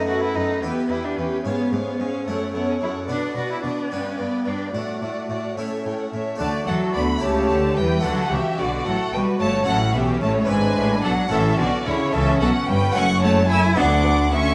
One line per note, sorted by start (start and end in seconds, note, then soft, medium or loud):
0.00 0.58 A3 soft
0.00 0.58 B3 soft
0.00 0.59 D#4 soft
0.07 0.32 F#2 soft
0.07 0.16 F#2 medium
0.07 0.21 F#4 medium
0.07 0.35 A4 soft
0.07 0.34 B4 medium
0.07 0.33 F#5 soft
0.23 0.37 E4 medium
0.34 0.60 F#2 soft
0.34 0.43 F#2 medium
0.34 0.65 D#4 medium
0.34 0.62 A4 soft
0.34 0.61 B4 soft
0.34 0.62 F#5 medium
0.62 0.70 E2 medium
0.62 0.87 E2 soft
0.62 1.41 B3 soft
0.62 0.92 B3 medium
0.62 1.41 E4 soft
0.62 0.89 G4 medium
0.62 0.88 B4 medium
0.62 0.90 G5 soft
0.89 0.98 E2 medium
0.89 1.15 E2 soft
0.89 1.06 E4 medium
0.89 1.17 G4 soft
0.89 1.16 B4 medium
0.89 1.17 G5 soft
1.05 1.19 D4 medium
1.17 1.25 E2 medium
1.17 1.43 E2 soft
1.17 1.45 C#4 medium
1.17 1.44 G4 medium
1.17 1.44 B4 medium
1.17 1.45 G5 medium
1.44 1.52 G#2 medium
1.44 1.69 G#2 soft
1.44 1.74 B3 medium
1.44 2.23 C#4 soft
1.44 1.71 G#4 medium
1.44 1.72 C#5 medium
1.44 1.72 F5 medium
1.72 1.80 G#2 medium
1.72 1.97 G#2 soft
1.72 1.86 A3 medium
1.72 1.99 G#4 soft
1.72 1.99 C#5 medium
1.72 1.99 F5 soft
1.87 2.02 B3 medium
1.99 2.07 G#2 medium
1.99 2.24 G#2 soft
1.99 2.29 C#4 medium
1.99 2.27 G#4 soft
1.99 2.25 C#5 soft
1.99 2.26 F5 soft
2.26 2.34 F#2 medium
2.26 2.52 F#2 soft
2.26 2.55 A3 medium
2.26 3.05 C#4 soft
2.26 2.53 A4 medium
2.26 2.54 C#5 medium
2.26 2.54 F#5 medium
2.54 2.62 F#2 soft
2.54 2.79 F#2 soft
2.54 2.68 B3 medium
2.54 2.81 A4 soft
2.54 2.80 C#5 medium
2.54 2.81 F#5 soft
2.69 2.74 C#4 medium
2.81 2.89 F#2 medium
2.81 3.06 F#2 soft
2.81 2.91 E4 medium
2.81 3.09 A4 medium
2.81 3.08 C#5 soft
2.81 3.09 F#5 medium
3.07 3.33 B2 soft
3.07 3.17 B2 medium
3.07 3.87 B3 soft
3.07 3.88 D4 soft
3.07 3.36 D4 medium
3.07 3.35 B4 soft
3.07 3.35 D5 medium
3.07 3.35 F#5 medium
3.35 3.60 B2 soft
3.35 3.44 B2 medium
3.35 3.50 F#4 medium
3.35 3.62 B4 soft
3.35 3.62 D5 soft
3.35 3.63 F#5 soft
3.52 3.64 E4 medium
3.63 3.71 B2 medium
3.63 3.88 B2 soft
3.63 3.93 D4 medium
3.63 3.89 B4 soft
3.63 3.89 D5 soft
3.63 3.91 F#5 soft
3.90 3.99 G2 medium
3.90 4.16 G2 soft
3.90 4.70 B3 soft
3.90 4.21 C#4 medium
3.90 4.71 D4 soft
3.90 4.18 B4 soft
3.90 4.18 D5 soft
3.90 4.18 G5 soft
4.18 4.43 G2 soft
4.18 4.26 G2 soft
4.18 4.50 B3 medium
4.18 4.44 B4 soft
4.18 4.46 D5 soft
4.18 4.46 G5 soft
4.46 4.71 G2 soft
4.46 4.54 G2 medium
4.46 4.74 D4 medium
4.46 4.73 B4 soft
4.46 4.74 D5 soft
4.46 4.74 G5 soft
4.74 4.82 A2 medium
4.74 4.99 A2 soft
4.74 6.10 A3 medium
4.74 5.53 D4 soft
4.74 5.01 F#4 soft
4.74 5.01 D5 soft
4.74 5.02 F#5 soft
5.01 5.09 A2 soft
5.01 5.27 A2 soft
5.01 5.29 F#4 soft
5.01 5.29 D5 soft
5.01 5.30 F#5 soft
5.29 5.37 A2 soft
5.29 5.55 A2 soft
5.29 5.57 F#4 soft
5.29 5.57 D5 soft
5.29 5.58 F#5 soft
5.57 5.65 A2 soft
5.57 5.82 A2 soft
5.57 6.34 A3 soft
5.57 6.36 C#4 soft
5.57 6.37 E4 soft
5.57 5.84 A4 soft
5.57 5.84 C#5 soft
5.57 5.83 E5 medium
5.85 6.10 A2 soft
5.85 5.94 A2 soft
5.85 6.12 A4 soft
5.85 6.11 C#5 soft
5.85 5.99 G5 medium
6.01 6.14 F#5 soft
6.13 6.21 A2 soft
6.13 6.38 A2 soft
6.13 6.40 A4 soft
6.13 6.40 C#5 soft
6.13 6.40 E5 medium
6.36 6.64 A3 medium
6.36 7.19 D4 medium
6.36 7.19 F#4 medium
6.36 6.47 A5 loud
6.40 6.49 D2 medium
6.40 6.65 D3 medium
6.40 6.48 D3 medium
6.40 6.66 A3 medium
6.40 7.19 F#4 medium
6.40 6.65 D5 medium
6.67 6.76 E2 medium
6.67 6.92 E3 medium
6.67 6.77 E3 medium
6.67 6.95 F#3 medium
6.67 6.94 A4 medium
6.67 6.76 F#5 medium
6.94 7.22 D2 medium
6.94 7.19 D3 medium
6.94 7.22 D3 medium
6.94 7.03 B3 medium
6.94 7.02 D5 medium
6.94 7.22 B5 medium
7.17 7.98 A3 medium
7.17 8.00 E4 medium
7.17 8.01 G4 medium
7.22 7.49 C#2 medium
7.22 7.47 C#3 medium
7.22 7.49 C#3 medium
7.22 7.79 A3 medium
7.22 8.05 G4 medium
7.22 7.76 C#5 medium
7.22 7.77 A5 medium
7.49 7.77 D2 medium
7.49 7.74 D3 medium
7.49 7.77 D3 medium
7.76 8.04 E2 medium
7.76 8.01 E3 medium
7.76 8.04 E3 medium
7.76 8.04 G3 medium
7.76 8.03 B4 medium
7.76 8.04 G5 loud
8.00 8.28 A3 medium
8.00 9.62 D4 medium
8.00 9.63 F#4 medium
8.00 8.31 F#5 medium
8.04 8.12 D2 medium
8.04 8.29 D3 medium
8.04 8.13 D3 medium
8.04 8.33 F#3 medium
8.04 8.85 F#4 medium
8.04 8.31 A4 medium
8.30 8.39 C#2 medium
8.30 8.56 C#3 medium
8.30 8.40 C#3 medium
8.30 8.59 E3 medium
8.30 8.58 G4 medium
8.30 8.59 E5 medium
8.58 8.86 B1 medium
8.58 8.83 B2 medium
8.58 8.86 B2 medium
8.58 8.86 D3 medium
8.58 8.87 F#4 medium
8.58 8.86 D5 medium
8.85 8.94 A1 medium
8.85 9.10 A2 medium
8.85 8.94 A2 medium
8.85 8.95 F#3 medium
8.85 9.67 F#4 medium
8.85 9.14 A4 medium
8.85 9.13 F#5 medium
9.13 9.21 B1 medium
9.13 9.38 B2 medium
9.13 9.22 B2 medium
9.13 9.41 G3 medium
9.13 9.41 B4 medium
9.13 9.21 G5 medium
9.40 9.68 G1 medium
9.40 9.65 G2 medium
9.40 9.68 G2 medium
9.40 9.67 A3 medium
9.40 9.68 C#5 medium
9.40 9.67 A5 loud
9.63 10.45 C#4 medium
9.63 10.46 E4 medium
9.63 10.46 A4 medium
9.67 9.95 A1 medium
9.67 9.92 A2 medium
9.67 9.95 A2 medium
9.67 9.76 F#3 medium
9.67 10.50 C#4 medium
9.67 9.76 A4 medium
9.67 9.94 F#5 loud
9.94 10.23 B1 medium
9.94 10.19 B2 medium
9.94 10.23 B2 medium
9.94 10.24 E3 medium
9.94 10.22 G4 medium
9.94 10.23 E5 medium
10.21 10.49 A1 medium
10.21 10.46 A2 medium
10.21 10.50 A2 medium
10.21 10.48 A3 medium
10.21 10.50 C#5 medium
10.21 10.30 A5 medium
10.45 11.03 G#3 medium
10.45 11.27 D4 medium
10.45 11.27 E4 medium
10.45 11.28 B4 medium
10.45 11.04 B4 medium
10.50 10.76 G#1 medium
10.50 10.74 G#2 medium
10.50 10.77 G#2 medium
10.50 11.32 D4 medium
10.50 11.03 G#5 loud
10.77 11.04 A1 medium
10.77 11.04 A2 medium
10.77 11.02 A2 medium
11.04 11.12 B1 medium
11.04 11.13 B2 medium
11.04 11.29 B2 medium
11.04 11.31 F#3 medium
11.04 11.12 A4 medium
11.04 11.32 F#5 loud
11.28 11.58 A1 medium
11.28 11.58 A2 medium
11.28 11.58 E3 medium
11.28 12.89 C#4 medium
11.28 12.12 C#4 medium
11.28 12.90 E4 medium
11.28 12.91 A4 medium
11.28 11.58 A4 medium
11.32 11.56 A2 medium
11.32 11.59 E5 loud
11.58 11.66 B1 medium
11.58 11.67 B2 medium
11.58 11.84 B2 medium
11.58 11.66 D3 medium
11.58 11.86 F#4 medium
11.58 11.86 D5 loud
11.85 11.94 D2 medium
11.85 12.16 C#3 medium
11.85 12.10 D3 medium
11.85 11.95 D3 medium
11.85 12.12 E4 medium
11.85 12.14 C#5 loud
12.13 12.40 C#2 medium
12.13 12.38 C#3 medium
12.13 12.40 C#3 medium
12.13 12.41 E3 medium
12.13 12.94 C#4 medium
12.13 12.39 A4 medium
12.13 12.40 E5 loud
12.39 12.48 B1 medium
12.39 12.65 B2 medium
12.39 12.49 B2 medium
12.39 12.50 F#3 medium
12.39 12.48 A4 loud
12.39 12.67 F#5 loud
12.68 12.95 G1 medium
12.68 12.93 G2 medium
12.68 12.95 G2 medium
12.68 12.95 G3 medium
12.68 12.95 B4 medium
12.68 12.95 G5 loud
12.91 13.67 F#1 loud
12.91 13.73 C#4 medium
12.91 13.74 F#4 medium
12.91 13.74 A4 medium
12.91 13.22 F#5 loud
12.95 13.68 F#2 medium
12.95 13.65 F#2 medium
12.95 13.04 A3 medium
12.95 13.04 C#4 loud
12.95 13.23 C#6 loud
13.21 13.49 A3 loud
13.21 13.31 A3 medium
13.21 13.49 C#5 loud
13.21 13.50 A5 loud
13.48 13.58 A3 medium
13.48 13.79 E4 loud
13.48 13.76 G#5 medium
13.48 13.59 E6 loud
13.73 14.50 D2 medium
13.73 14.53 B3 medium
13.73 13.85 B3 medium
13.73 14.31 D4 medium
13.73 14.54 F#4 medium
13.73 14.54 B4 medium
13.73 14.31 F#5 medium
13.77 14.50 D2 medium
13.77 14.47 D2 medium
13.77 14.31 D6 loud
14.04 14.12 B3 medium
14.32 14.40 B3 medium
14.32 14.54 C#4 medium
14.32 14.54 E5 loud
14.32 14.54 C#6 loud